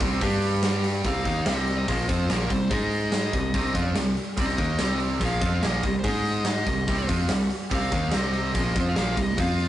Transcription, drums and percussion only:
0.01 kick, open hi-hat
0.21 kick, open hi-hat
0.42 open hi-hat
0.63 snare, open hi-hat
0.84 open hi-hat
1.05 kick, open hi-hat
1.25 kick, open hi-hat
1.46 snare, open hi-hat
1.68 open hi-hat
1.88 kick, open hi-hat
2.09 kick, open hi-hat
2.30 snare, open hi-hat
2.50 kick, open hi-hat
2.71 kick, open hi-hat
2.91 open hi-hat
3.12 snare, open hi-hat
3.33 kick, open hi-hat
3.54 kick, open hi-hat
3.75 kick, open hi-hat
3.96 snare, open hi-hat
4.17 open hi-hat
4.37 kick, open hi-hat
4.58 kick, open hi-hat
4.79 snare, open hi-hat
5.00 open hi-hat
5.21 kick, open hi-hat
5.41 kick, open hi-hat
5.63 snare, open hi-hat
5.83 kick, open hi-hat
6.04 kick, open hi-hat
6.25 open hi-hat
6.45 snare, open hi-hat
6.67 kick, open hi-hat
6.88 kick, open hi-hat
7.09 kick, open hi-hat
7.29 snare, open hi-hat
7.50 open hi-hat
7.71 kick, open hi-hat
7.92 kick, open hi-hat
8.12 snare, open hi-hat
8.34 open hi-hat
8.55 kick, open hi-hat
8.76 kick, open hi-hat
8.96 snare, open hi-hat
9.17 kick, open hi-hat
9.38 kick, open hi-hat
9.59 open hi-hat

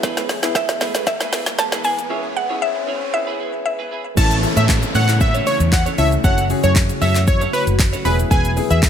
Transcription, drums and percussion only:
0.03 kick, snare, shaker
0.17 snare, closed hi-hat, shaker
0.29 snare, open hi-hat, shaker
0.43 snare, closed hi-hat, shaker
0.55 kick, snare, shaker
0.69 snare, closed hi-hat, shaker
0.81 snare, open hi-hat, shaker
0.95 snare, closed hi-hat, shaker
1.07 kick, snare, shaker
1.21 snare, closed hi-hat, shaker
1.33 snare, open hi-hat, shaker
1.46 snare, closed hi-hat, shaker
1.58 snare, shaker
1.72 snare, closed hi-hat, shaker
1.84 open hi-hat, shaker
1.99 closed hi-hat, shaker
4.17 kick, crash, shaker
4.31 closed hi-hat, shaker
4.43 open hi-hat, shaker
4.57 closed hi-hat, shaker
4.69 kick, clap, shaker
4.83 closed hi-hat, shaker
4.95 open hi-hat, shaker
5.09 clap, closed hi-hat, shaker
5.21 kick, shaker
5.35 closed hi-hat, shaker
5.47 open hi-hat, shaker
5.60 closed hi-hat, shaker
5.72 kick, clap, shaker
5.86 closed hi-hat, shaker
5.98 open hi-hat, shaker
6.12 closed hi-hat, shaker
6.24 kick, shaker
6.38 closed hi-hat, shaker
6.50 open hi-hat, shaker
6.63 closed hi-hat, shaker
6.76 kick, clap, shaker
6.90 closed hi-hat, shaker
7.02 open hi-hat, shaker
7.15 clap, closed hi-hat, shaker
7.27 kick, shaker
7.41 closed hi-hat, shaker
7.54 open hi-hat, shaker
7.67 closed hi-hat, shaker
7.79 kick, clap, shaker
7.93 closed hi-hat, shaker
8.05 open hi-hat, shaker
8.19 closed hi-hat, shaker
8.31 kick, shaker
8.45 closed hi-hat, shaker
8.57 open hi-hat, shaker
8.71 closed hi-hat, shaker
8.83 kick, clap, shaker

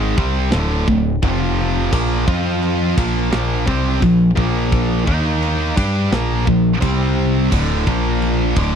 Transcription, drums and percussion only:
0.18 kick
0.52 snare, china
0.88 kick
1.22 kick, china
1.93 kick, china, crash
2.28 kick
2.63 china
2.98 kick, crash
3.33 snare, china
3.67 kick
4.02 kick, china
4.37 kick
4.72 kick, china
5.07 kick
5.42 china
5.77 kick, crash
6.12 snare, china
6.47 kick
6.82 kick, china
7.52 kick, crash, china
7.87 kick
8.22 china
8.56 kick, crash

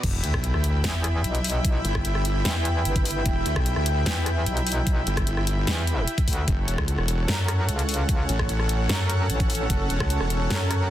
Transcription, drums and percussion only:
0.03 kick, closed hi-hat, crash
0.24 closed hi-hat
0.34 kick, cross-stick
0.44 closed hi-hat
0.54 cross-stick
0.64 closed hi-hat
0.84 snare, closed hi-hat
1.04 cross-stick, closed hi-hat
1.24 closed hi-hat
1.35 closed hi-hat
1.44 open hi-hat
1.50 closed hi-hat
1.65 kick, closed hi-hat
1.85 closed hi-hat
1.95 kick, cross-stick
2.05 closed hi-hat
2.15 cross-stick
2.25 closed hi-hat
2.45 snare, closed hi-hat
2.65 closed hi-hat
2.85 closed hi-hat
2.96 kick, closed hi-hat
3.05 open hi-hat
3.11 closed hi-hat
3.26 kick, closed hi-hat
3.46 closed hi-hat
3.56 kick, cross-stick
3.66 closed hi-hat
3.76 cross-stick
3.86 closed hi-hat
4.06 snare, closed hi-hat
4.26 cross-stick, closed hi-hat
4.46 closed hi-hat
4.57 closed hi-hat
4.67 open hi-hat
4.72 closed hi-hat
4.87 kick, closed hi-hat
5.07 closed hi-hat
5.17 kick, cross-stick, closed hi-hat
5.27 closed hi-hat
5.37 cross-stick
5.47 closed hi-hat
5.67 snare, closed hi-hat
5.87 closed hi-hat
6.07 closed hi-hat
6.18 kick, closed hi-hat
6.28 kick, open hi-hat
6.33 closed hi-hat
6.48 kick, closed hi-hat
6.68 closed hi-hat
6.78 kick, cross-stick
6.88 closed hi-hat
6.98 cross-stick
7.08 closed hi-hat
7.28 snare, closed hi-hat
7.48 cross-stick, closed hi-hat
7.69 closed hi-hat
7.79 closed hi-hat
7.89 open hi-hat
7.94 closed hi-hat
8.09 kick, closed hi-hat
8.29 closed hi-hat
8.39 kick, cross-stick
8.49 closed hi-hat
8.60 cross-stick
8.69 closed hi-hat
8.89 snare, closed hi-hat
9.10 closed hi-hat
9.30 closed hi-hat
9.40 kick, closed hi-hat
9.50 open hi-hat
9.55 closed hi-hat
9.70 kick, closed hi-hat
9.90 closed hi-hat
10.00 kick, cross-stick
10.10 closed hi-hat
10.21 cross-stick
10.30 closed hi-hat
10.50 snare, closed hi-hat
10.71 cross-stick, closed hi-hat

